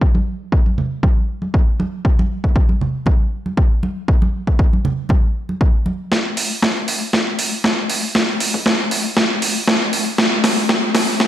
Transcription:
0.01 kick
0.15 high conga
0.52 kick
0.66 high conga
0.78 low conga
1.03 kick, high conga
1.42 high conga
1.54 kick
1.80 high conga
2.05 kick
2.19 high conga
2.44 kick
2.56 kick
2.69 high conga
2.81 low conga
3.06 kick, high conga
3.46 high conga
3.57 kick
3.83 high conga
4.08 kick
4.22 high conga
4.47 kick
4.59 kick
4.73 high conga
4.85 low conga
5.09 kick, high conga
5.49 high conga
5.61 kick
5.86 high conga
6.12 kick, snare
6.37 open hi-hat
6.62 kick, snare
6.88 open hi-hat
7.13 kick, snare
7.39 open hi-hat
7.64 kick, snare
7.90 open hi-hat
8.15 kick, snare
8.40 open hi-hat
8.54 kick
8.66 kick, snare
8.91 open hi-hat
9.17 kick, snare
9.42 open hi-hat
9.68 kick, snare
9.93 open hi-hat
10.18 kick, snare
10.44 snare, open hi-hat
10.69 kick, snare
10.95 snare, open hi-hat
11.20 kick, snare

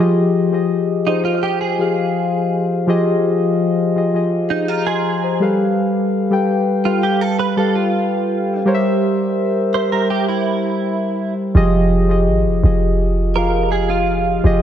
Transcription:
Already playing: F3
0.00 F4 G4 G#4 D#5
0.52 F3 F4 G4 G#4 D#5
1.06 F3 D#4 F4 G4 G#4 C5
1.25 F4
1.43 G4
1.61 G#4
1.78 F3 F4 G4 G#4 F5
2.87 F3 F4 G4 G#4 D#5
3.95 F3 F4 G4 G#4 D#5
4.13 F3 F4 G4 G#4 D#5
4.50 D#4
4.68 F4 A#5
4.87 G#4 D#5 C6
5.23 C5 G#5
5.40 G3 G4 A4 B4 F5
6.30 G3 G4 A4 B4 G5
6.84 G3 F4 G4 A4 B4 F5
7.03 G4
7.21 A4
7.39 B4
7.57 G3 G4 A4 B4 F5
7.75 F4
8.65 G3 G4 A#4 C5 C#5
8.74 E5
9.74 G3 G4 A#4 C5 E5
9.92 G3 G4 A#4 C5 E5
10.10 G4
10.28 E4
11.54 F1 F3 F4 G4 G#4 D#5
12.08 F3 F4 G4 G#4 D#5
12.27 G#1
12.45 F1
12.63 F1 F3 F4 G4 G#4 D#5
13.35 F3 F4 G4 G#4 A#4 F5
13.72 G#4
13.90 F4
14.43 F1 F3 F4 G4 G#4 D#5

